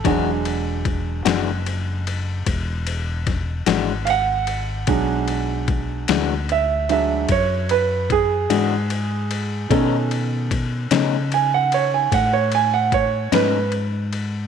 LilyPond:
<<
  \new Staff \with { instrumentName = "Grand piano" } { \time 12/8 \key e \mixolydian \tempo 4. = 50 r1 r4 <f'' fis''>4~ | <f'' fis''>2 e''8 e''8 cis''8 b'8 gis'2~ | gis'4 r4 gis''16 fis''16 cis''16 gis''16 fis''16 cis''16 gis''16 fis''16 cis''8 b'8 r4 | }
  \new Staff \with { instrumentName = "Grand piano" } { \clef bass \time 12/8 \key e \mixolydian <fis gis d'>1. | <fis gis d'>4. r4 <fis gis d'>8 r2. | <dis cis' a'>1. | }
  \new Staff \with { instrumentName = "Clean electric guitar" } { \time 12/8 \key e \mixolydian <e gis d' fis'>8 r4 <e gis d' fis'>8 r2 r8 <e gis d' fis'>8 r4 | r4. <e gis d' fis'>8 r2 r8 <e gis d' fis'>8 r4 | <b, a cis' dis'>8 r4 <b, a cis' dis'>8 r2 r8 <b, a cis' dis'>8 r4 | }
  \new Staff \with { instrumentName = "Fingered electric bass" } { \clef bass \time 12/8 \key e \mixolydian e,,4. fis,,4. e,,4. gis,,4. | b,,4. d,4. fis,4. gis,4. | b,4. cis4. a,4. gis,4. | }
  \new DrumStaff \with { instrumentName = "Drums" } \drummode { \time 12/8 <bd cymr>8 cymr8 <bd cymr>8 <cymr sn>8 cymr8 cymr8 <bd cymr>8 cymr8 <bd cymr sn>8 <cymr sn>8 cymr8 cymr8 | <bd cymr>8 cymr8 <bd cymr>8 <cymr sn>8 cymr8 cymr8 <bd cymr>8 cymr8 <bd cymr>8 cymr8 cymr8 cymr8 | <bd cymr>8 cymr8 <bd cymr>8 <cymr sn>8 cymr8 cymr8 <bd cymr>8 cymr8 <bd cymr>8 <cymr sn>8 cymr8 cymr8 | }
>>